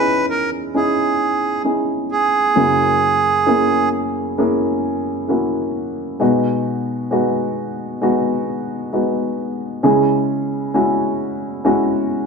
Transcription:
0.00 2.52 E2 soft
0.00 2.53 E3 soft
0.00 0.74 C#4 medium
0.00 0.75 D#4 soft
0.00 0.75 E4 medium
0.00 0.76 G#4 medium
0.00 0.26 B4 medium
0.30 0.50 A#4 medium
0.74 1.61 C#4 medium
0.74 1.61 D#4 soft
0.74 1.61 E4 soft
0.74 1.61 G#4 medium
0.74 1.62 G#4 medium
1.65 2.51 C#4 soft
1.65 2.52 D#4 soft
1.65 2.52 E4 soft
1.65 2.52 G#4 soft
2.11 3.89 G#4 medium
2.56 6.16 F#2 soft
2.56 6.16 C#3 soft
2.56 3.42 A#3 medium
2.56 3.42 C#4 soft
2.56 3.43 E4 soft
2.56 3.43 F#4 medium
3.46 4.33 A#3 medium
3.46 4.33 C#4 medium
3.46 4.34 E4 medium
3.46 4.34 G#4 medium
4.38 5.25 A#3 medium
4.38 5.25 C#4 medium
4.38 5.25 E4 medium
4.38 5.25 G#4 medium
5.28 6.15 A#3 soft
5.28 6.15 C#4 soft
5.28 6.15 E4 soft
5.28 6.16 F#4 medium
6.20 9.80 B2 medium
6.20 7.06 G#3 medium
6.20 7.06 B3 medium
6.20 7.07 D#4 medium
6.20 7.07 F#4 medium
7.11 7.97 G#3 medium
7.11 7.97 B3 medium
7.11 7.98 D#4 medium
7.11 7.98 F#4 medium
8.01 8.88 G#3 medium
8.01 8.88 B3 medium
8.01 8.88 D#4 medium
8.01 8.89 F#4 medium
8.92 9.79 G#3 soft
8.92 9.79 B3 medium
8.92 9.79 D#4 soft
8.92 9.79 F#4 medium
9.83 12.26 C#3 medium
9.83 10.70 G#3 medium
9.83 10.70 C#4 medium
9.83 10.70 E4 medium
9.83 10.70 G#4 medium
10.74 11.61 G#3 medium
10.74 11.61 C#4 medium
10.74 11.61 E4 medium
10.74 11.61 F#4 medium
11.65 12.26 G#3 medium
11.65 12.26 C#4 medium
11.65 12.26 E4 medium
11.65 12.26 F#4 medium

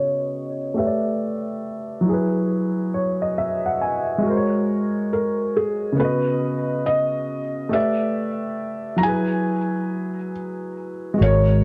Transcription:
0.00 0.70 C#3 medium
0.00 0.72 B3 soft
0.00 0.74 F#4 medium
0.00 0.80 C#5 medium
0.00 0.76 D#5 medium
0.74 2.06 A3 soft
0.74 2.07 G4 soft
0.74 2.08 B4 medium
0.74 2.04 E5 medium
0.80 0.87 C#5 soft
0.87 2.12 D5 medium
2.01 4.17 F#3 medium
2.05 4.20 E4 medium
2.05 4.22 G#4 medium
2.13 4.24 B4 medium
2.94 3.20 C#5 medium
3.22 3.37 D#5 medium
3.38 3.64 E5 medium
3.66 3.80 F#5 medium
3.81 4.22 G#5 medium
4.18 5.92 G#3 medium
4.22 5.94 F#4 medium
4.26 5.96 A#4 medium
4.26 4.36 C5 medium
4.37 6.01 C#5 medium
5.13 5.57 A#4 medium
5.57 5.96 G#4 medium
5.92 7.66 C#3 medium
5.92 7.68 B3 medium
6.00 7.70 F#4 medium
6.00 6.89 B4 medium
6.04 7.72 D#5 medium
6.86 7.75 D#5 medium
7.69 9.01 A3 medium
7.69 9.02 G4 medium
7.69 9.02 E5 medium
7.73 9.03 B4 soft
7.73 9.04 D5 medium
8.96 11.13 F#3 medium
8.96 9.03 A#5 medium
9.01 11.15 E4 medium
9.01 10.29 G#5 medium
9.05 11.17 G#4 medium
9.05 11.19 B4 medium
11.14 11.64 G#3 medium
11.18 11.61 G#1 loud
11.18 11.64 F#4 medium
11.22 11.64 A#4 medium
11.22 11.64 C#5 medium

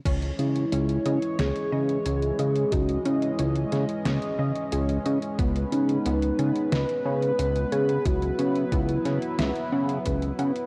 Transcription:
0.05 0.32 C#2 medium
0.05 5.35 E3 medium
0.05 8.02 G#3 medium
0.05 0.22 C#4 loud
0.05 8.02 C#4 medium
0.05 2.70 C#5 medium
0.05 kick loud
0.05 closed hi-hat loud
0.05 crash medium
0.22 closed hi-hat soft
0.39 0.65 C#3 medium
0.39 1.41 E4 loud
0.39 closed hi-hat medium
0.56 closed hi-hat soft
0.72 0.98 C#2 medium
0.72 0.99 C#4 loud
0.72 closed hi-hat medium
0.89 closed hi-hat soft
1.06 1.19 C#3 medium
1.06 1.22 D#5 medium
1.06 closed hi-hat medium
1.22 closed hi-hat soft
1.39 1.52 C#2 medium
1.39 2.38 G#4 loud
1.39 1.55 C#5 medium
1.39 snare loud
1.39 closed hi-hat loud
1.56 closed hi-hat soft
1.72 1.98 C#3 loud
1.72 1.99 D#5 medium
1.89 closed hi-hat soft
2.06 2.32 C#2 medium
2.06 2.32 G#4 medium
2.06 closed hi-hat medium
2.22 closed hi-hat soft
2.39 2.65 C#3 medium
2.39 2.74 G#4 loud
2.39 2.66 D#5 medium
2.39 closed hi-hat medium
2.56 closed hi-hat soft
2.72 2.98 C#2 medium
2.72 3.04 D#4 medium
2.72 3.07 F#4 loud
2.72 5.36 D#5 medium
2.72 kick loud
2.72 closed hi-hat loud
2.89 closed hi-hat soft
3.06 3.32 C#3 medium
3.06 3.37 C#4 medium
3.06 4.06 E4 medium
3.06 closed hi-hat medium
3.22 closed hi-hat soft
3.39 3.65 C#2 medium
3.39 3.66 C#4 loud
3.39 closed hi-hat medium
3.55 closed hi-hat soft
3.72 3.85 C#3 medium
3.72 snare soft
3.72 closed hi-hat medium
3.89 closed hi-hat soft
4.05 4.19 C#2 medium
4.05 4.22 C#5 medium
4.05 snare loud
4.05 closed hi-hat loud
4.22 closed hi-hat soft
4.39 4.52 C#3 medium
4.39 4.66 D#5 medium
4.56 closed hi-hat soft
4.72 4.98 C#2 medium
4.72 4.99 G#4 medium
4.72 closed hi-hat loud
4.89 closed hi-hat soft
5.06 5.19 C#3 medium
5.06 5.32 D#5 medium
5.06 closed hi-hat medium
5.22 closed hi-hat soft
5.39 5.65 C#2 medium
5.39 5.55 B3 loud
5.39 10.66 B3 medium
5.39 10.66 B4 medium
5.39 kick loud
5.39 closed hi-hat medium
5.56 closed hi-hat soft
5.72 5.98 C#3 medium
5.72 6.73 D#4 loud
5.72 closed hi-hat medium
5.89 closed hi-hat soft
6.05 6.32 C#2 medium
6.05 6.32 B3 loud
6.05 closed hi-hat medium
6.22 closed hi-hat soft
6.39 6.52 C#3 medium
6.39 6.55 G#5 medium
6.39 closed hi-hat medium
6.56 closed hi-hat soft
6.72 6.85 C#2 medium
6.72 7.73 B4 loud
6.72 6.88 D#5 medium
6.72 snare loud
6.72 closed hi-hat loud
6.89 closed hi-hat soft
7.05 7.32 C#3 loud
7.05 7.32 G#5 medium
7.22 closed hi-hat soft
7.39 7.65 C#2 medium
7.39 7.66 B4 medium
7.39 closed hi-hat medium
7.56 closed hi-hat soft
7.72 7.98 C#3 medium
7.72 8.07 G#4 loud
7.72 7.99 G#5 medium
7.72 closed hi-hat medium
7.89 closed hi-hat soft
8.05 8.32 C#2 medium
8.05 10.66 F#3 medium
8.05 8.37 E4 medium
8.05 10.66 E4 medium
8.05 8.73 F#4 loud
8.05 kick loud
8.05 closed hi-hat medium
8.22 closed hi-hat soft
8.39 8.65 C#3 medium
8.39 8.71 B3 loud
8.39 closed hi-hat medium
8.56 closed hi-hat soft
8.72 8.98 C#2 medium
8.72 8.99 B3 loud
8.72 9.39 E4 medium
8.72 kick loud
8.72 closed hi-hat medium
8.89 closed hi-hat soft
9.05 9.19 C#3 medium
9.05 snare soft
9.05 closed hi-hat medium
9.22 closed hi-hat soft
9.39 9.52 C#2 medium
9.39 9.55 E5 medium
9.39 snare loud
9.39 closed hi-hat medium
9.56 closed hi-hat soft
9.72 9.98 C#3 loud
9.72 9.99 F#5 medium
9.89 closed hi-hat soft
10.05 10.32 C#2 medium
10.05 10.32 B4 medium
10.05 kick medium
10.05 closed hi-hat medium
10.22 closed hi-hat soft
10.39 10.52 C#3 medium
10.39 10.66 F#5 medium
10.39 closed hi-hat medium
10.56 closed hi-hat soft

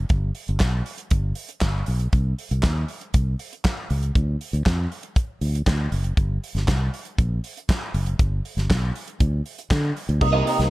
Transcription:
0.09 0.30 G1 medium
0.09 kick loud
0.09 closed hi-hat soft
0.35 open hi-hat medium
0.48 0.58 G1 medium
0.48 closed hi-hat soft
0.60 0.81 B1 medium
0.60 kick loud
0.60 snare medium
0.60 clap medium
0.60 closed hi-hat medium
0.86 open hi-hat medium
0.98 closed hi-hat soft
1.10 1.31 G1 medium
1.10 kick loud
1.10 closed hi-hat medium
1.35 open hi-hat medium
1.49 closed hi-hat soft
1.60 1.82 G1 medium
1.60 kick loud
1.60 snare loud
1.60 clap medium
1.60 closed hi-hat medium
1.86 2.08 B1 medium
1.86 open hi-hat medium
1.99 closed hi-hat soft
2.13 2.33 C2 medium
2.13 kick loud
2.13 closed hi-hat soft
2.38 open hi-hat medium
2.51 2.61 C2 medium
2.51 closed hi-hat soft
2.63 2.83 D#2 medium
2.63 kick loud
2.63 snare medium
2.63 clap medium
2.63 closed hi-hat medium
2.88 open hi-hat soft
3.01 closed hi-hat soft
3.14 3.34 C2 medium
3.14 kick loud
3.14 closed hi-hat medium
3.39 open hi-hat medium
3.53 closed hi-hat soft
3.64 kick loud
3.64 snare loud
3.64 clap medium
3.64 closed hi-hat medium
3.90 4.10 C#2 medium
3.90 open hi-hat soft
4.03 closed hi-hat soft
4.15 4.35 D2 medium
4.15 kick loud
4.15 closed hi-hat soft
4.41 open hi-hat medium
4.53 4.63 D2 medium
4.53 closed hi-hat soft
4.66 4.86 F2 medium
4.66 kick medium
4.66 snare medium
4.66 clap medium
4.66 closed hi-hat medium
4.92 open hi-hat soft
5.03 closed hi-hat soft
5.16 kick loud
5.16 closed hi-hat medium
5.41 5.61 D2 medium
5.41 open hi-hat medium
5.55 closed hi-hat soft
5.67 5.86 D2 medium
5.67 kick medium
5.67 snare loud
5.67 clap medium
5.67 closed hi-hat medium
5.92 6.12 F#1 medium
5.92 open hi-hat medium
6.04 closed hi-hat soft
6.17 6.37 G1 medium
6.17 kick loud
6.17 closed hi-hat medium
6.44 open hi-hat medium
6.55 6.65 G1 medium
6.55 snare soft
6.55 closed hi-hat soft
6.68 6.88 C2 medium
6.68 kick loud
6.68 snare medium
6.68 clap medium
6.68 closed hi-hat medium
6.94 open hi-hat medium
7.05 closed hi-hat soft
7.18 7.38 A#1 medium
7.18 kick loud
7.18 closed hi-hat medium
7.44 open hi-hat medium
7.57 closed hi-hat soft
7.69 kick loud
7.69 snare loud
7.69 clap medium
7.69 closed hi-hat medium
7.94 8.14 F#1 medium
7.94 open hi-hat medium
8.06 closed hi-hat soft
8.19 8.39 G1 medium
8.19 kick loud
8.19 closed hi-hat medium
8.45 open hi-hat medium
8.57 8.67 G1 medium
8.57 snare soft
8.57 closed hi-hat soft
8.70 8.90 B1 loud
8.70 kick loud
8.70 snare loud
8.70 clap medium
8.70 closed hi-hat medium
8.95 open hi-hat medium
9.07 closed hi-hat soft
9.20 9.40 D2 medium
9.20 kick loud
9.20 closed hi-hat medium
9.46 open hi-hat medium
9.58 closed hi-hat soft
9.70 9.91 D3 medium
9.70 kick loud
9.70 snare loud
9.70 clap medium
9.70 closed hi-hat medium
9.96 open hi-hat medium
10.09 10.19 D2 medium
10.09 closed hi-hat soft
10.21 10.41 C2 medium
10.21 10.70 C3 medium
10.21 10.70 A#3 medium
10.21 10.70 D#4 medium
10.21 muted clean electric guitar stroke soft
10.21 kick loud
10.21 crash loud
10.33 10.45 G4 medium
10.33 10.46 A#4 medium
10.33 10.46 D#5 loud
10.46 10.58 G4 medium
10.46 10.58 A#4 medium
10.46 10.57 D#5 medium
10.46 open hi-hat medium
10.59 10.69 C2 loud
10.59 muted clean electric guitar stroke medium
10.59 snare soft
10.59 closed hi-hat medium

